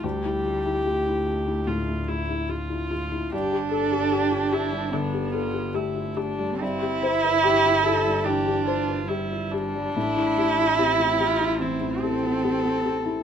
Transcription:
X:1
M:4/4
L:1/16
Q:1/4=73
K:Ddor
V:1 name="Felt piano"
D,, E F E F E F E A,, E F E F E F E | G,, G A G G F G G, D, G A G G F G G, | G,, G c B G F G G, E, G c B G F G G, | A,, E G F G F G E E, E G F G F G E |]
V:2 name="Viola"
G8 F2 E2 F4 | G2 A2 G2 E2 D2 F2 E2 D2 | C2 E2 G2 A2 G2 F2 E2 D2- | D4 C2 F2 E2 A6 |]
V:3 name="Cello"
G,4 A,8 z4 | D8 B,4 A,4 | E8 D4 G,4 | E8 C8 |]
V:4 name="Double bass" clef=bass
D,,16 | G,,,16 | G,,,16 | A,,,16 |]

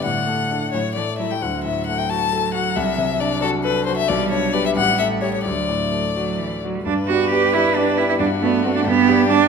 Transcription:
X:1
M:6/8
L:1/16
Q:3/8=89
K:D
V:1 name="Violin"
f6 c2 d2 e g | f2 e2 f g a4 f2 | e4 d2 A2 B2 =c e | d2 c2 d e f2 e2 c c |
d8- d2 z2 | [K:G] B12 | F6 G6 |]
V:2 name="Grand piano"
A,,2 A,2 [DA]2 A,,2 A,2 [EA]2 | D,,2 A,,2 A,2 F2 A2 F2 | =C,,2 =C,2 D2 F2 A2 F2 | B,,,2 D2 [GB]2 A,,,2 A,2 [Gc]2 |
D,,2 A,,2 A,2 F2 d2 F2 | [K:G] G,,2 [B,Gd]2 [B,Gd]2 [B,Gd]2 [B,Gd]2 [B,Gd]2 | G,,2 [A,Fd]2 [A,Fd]2 G,,2 [G,Gd]2 [G,Gd]2 |]
V:3 name="Cello"
D,6 F,2 E,2 F, G, | F,12- | F,12 | G,6 G,6 |
F,6 F,2 E,2 F, G, | [K:G] D2 F2 G2 E2 D2 E E | D2 B,2 C D B,4 D2 |]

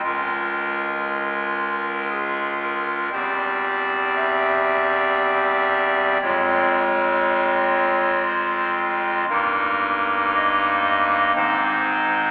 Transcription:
X:1
M:3/4
L:1/8
Q:1/4=58
K:Fm
V:1 name="Pipe organ"
B4 A B | c2 =e4 | d4 c z | B2 e2 c2 |]
V:2 name="Pipe organ" clef=bass
[D,,,D,,A,DF]6 | [=E,,,=E,,G,CG]6 | [F,,,F,,A,CF]6 | [G,,,G,,B,E]4 [A,,,A,,A,CE]2 |]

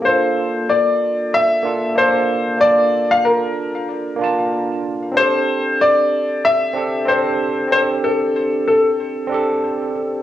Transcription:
X:1
M:4/4
L:1/16
Q:"Swing 16ths" 1/4=94
K:Bblyd
V:1 name="Grand piano"
c4 d4 e4 c4 | d3 f B8- B2 z2 | c4 d4 e4 c4 | c2 A4 A8 z2 |]
V:2 name="Tine electric piano"
[B,DFA]8- [B,DFA]2 [B,DFA]2 [B,DFA]4 | [B,DFa]8- [B,DFa]2 [B,DFa]6 | [CDGA]8- [CDGA]2 [CDGA]2 [CDGA]4 | [CDGA]8- [CDGA]2 [CDGA]6 |]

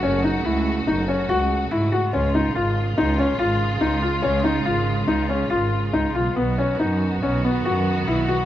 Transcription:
X:1
M:5/4
L:1/8
Q:1/4=142
K:C#m
V:1 name="Felt piano"
C D E2 D C F2 E F | C D ^E2 D C E2 D E | C D ^E2 D C E2 D E | B, C D2 C B, F2 E F |]
V:2 name="String section"
[C,A,F]8- [C,A,F]2 | [C,G,^E]8- [C,G,E]2- | [C,G,^E]8- [C,G,E]2 | [D,B,F]8- [D,B,F]2 |]
V:3 name="Double bass" clef=bass
F,,,2 C,,2 F,,,2 C,,2 G,, z | C,,2 G,,,2 C,,2 G,,,2 C,, z | C,,2 G,,,2 C,,2 G,,,2 C,, B,,, | B,,,2 F,,2 B,,,2 F,,2 B,,, z |]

